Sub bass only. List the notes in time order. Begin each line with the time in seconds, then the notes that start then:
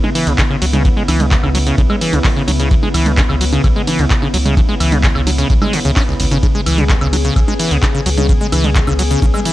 0.27 C#2
0.62 C#2
1.08 C#2
1.43 C#2
1.78 B1
2.13 C#2
2.48 C#2
2.94 C#2
3.29 C#2
3.64 B1
3.99 C#2
4.34 C#2
4.80 C#2
5.15 C#2
5.50 B1
5.85 C#2
6.20 G#1
6.66 C#2
7.01 C#2
7.36 B1
7.71 C#2
8.06 C#2
8.52 C#2
8.87 C#2
9.22 B1